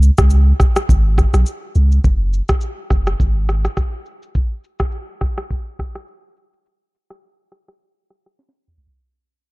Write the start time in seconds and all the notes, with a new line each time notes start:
Already playing: C#2
0.03 shaker
0.18 C#2, kick, cross-stick, shaker
0.30 shaker
0.60 kick, cross-stick, shaker
0.76 cross-stick, shaker
0.89 G#1, kick, shaker
1.18 kick, cross-stick, shaker
1.34 B1, cross-stick, shaker
1.46 shaker
1.75 C#2, shaker
1.92 shaker
2.04 F#1, kick, shaker
2.33 shaker
2.48 kick, cross-stick, shaker
2.61 shaker
2.90 F#1, kick, cross-stick, shaker
3.07 cross-stick, shaker
3.20 G#1, kick, shaker
3.49 cross-stick, shaker
3.65 cross-stick, shaker
3.77 kick, cross-stick, shaker
4.06 shaker
4.22 shaker
4.35 kick, shaker
4.64 shaker
4.79 kick, cross-stick, shaker
4.92 shaker
5.21 kick, cross-stick, shaker
5.37 cross-stick, shaker
5.51 kick, shaker
5.79 kick, cross-stick, shaker
5.95 cross-stick, shaker
6.08 shaker
6.37 shaker
6.53 shaker
6.66 shaker
7.10 cross-stick
7.52 cross-stick
7.68 cross-stick
8.10 cross-stick
8.26 cross-stick
8.39 snare
8.49 snare
8.68 mid tom
8.78 floor tom
8.87 floor tom